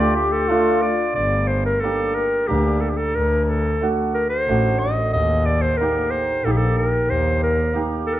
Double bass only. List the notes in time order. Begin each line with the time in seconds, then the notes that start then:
Already playing: D2
1.16 G1
2.49 D2
3.16 D2
4.48 A1
5.14 D#2
6.45 A#1
7.09 D#2